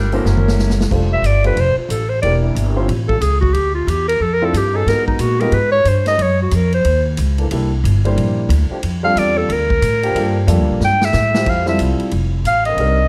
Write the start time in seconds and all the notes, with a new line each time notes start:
Already playing: G1 G3 D4 F4 A#4
0.12 F3 A#3 C#4 D4 E4 F#4 A4 C5, open hi-hat
0.25 F#1 F#3 C#4 E4 A#4, snare
0.37 mid tom
0.48 snare
0.59 snare
0.70 snare
0.81 snare
0.90 F1 G3 A3 D4 F4 G4 A4 C5, kick, crash
1.13 E5
1.22 G1, hi-hat pedal, ride
1.26 D5
1.44 A3 D4 F4 G4 B4 C5, ride
1.56 F1, ride
1.60 C5
1.76 F4, muted upright bass stroke
1.89 A1 G3 D4 F4 A4, hi-hat pedal, ride
2.09 C5
2.22 E1 A#3 D4 E4 G4 A#4 D5, ride
2.42 G3 D4 E4 A#4
2.55 G1, hi-hat pedal, ride
2.76 C4 C#4 F4 G4 C5
2.88 A1, ride
3.07 G3 C#4 F4 A4, kick
3.21 C#2 G#4, hi-hat pedal, ride
3.41 F#4, kick
3.54 D2 G4, ride
3.75 F4
3.87 E2 G4, hi-hat pedal, ride
4.08 A#4, ride
4.20 F2 A4
4.33 A#4
4.42 C4 D4 E4 F4 A4
4.53 G2, hi-hat pedal, ride
4.58 G4
4.72 F#3 B3 D#4 G#4 A4
4.86 G#2 G#3 B3 D#4 F#4 A#4, snare, ride
5.07 D#4, kick
5.19 A#2 F#4, hi-hat pedal, ride
5.40 G#3 B3 D#4 F4 G4 A#4, ride
5.52 G#2 B4, ride
5.72 C#5
5.85 G2 C5, hi-hat pedal, ride
6.05 F#3 C#4 D#4 A#4 D#5, snare, ride
6.18 F#2, ride
6.22 C#5
6.42 F#4
6.51 F2, hi-hat pedal, ride
6.55 A#4
6.72 C5, ride
6.84 D#2, ride
7.17 C#2, hi-hat pedal, ride
7.37 E3 A#3 D4 A4, ride
7.51 C2 G3 A#3 D4 E4 A4, ride
7.84 G1, hi-hat pedal, ride
8.05 G3 A#3 D4 E4 C5, ride
8.16 A#1, ride
8.49 D2, hi-hat pedal, ride
8.69 F3 A3 D4 G4
8.83 F2, ride
9.03 G3 C4 D4 F4 A4 F5
9.16 E2 D5, hi-hat pedal, ride
9.38 A4
9.49 D2 A#4, ride
9.70 kick
9.82 A2, hi-hat pedal, ride
10.02 F3 A#3 D4 G4, ride
10.15 G2 G3 A#3 D4 F4 A4, ride
10.47 F2 G3 A#3 D4 F4 A4, hi-hat pedal, ride
10.59 D2
10.69 A#1
10.80 G2, snare
10.85 G5
11.01 E5, snare
11.13 A2, snare, hi-hat pedal
11.33 F3 A3 E4 G4, snare
11.46 F2 F5, kick, crash
11.66 G3 C4 E4 F4 A4 E5, snare
11.79 C2, hi-hat pedal, ride
12.00 muted upright bass stroke, ride
12.11 F1, ride
12.44 A1 F5, hi-hat pedal, ride
12.65 D3 D#3 C4 A#4 D#5, ride
12.77 C2 G3 C4 D4 D#4 A#4, ride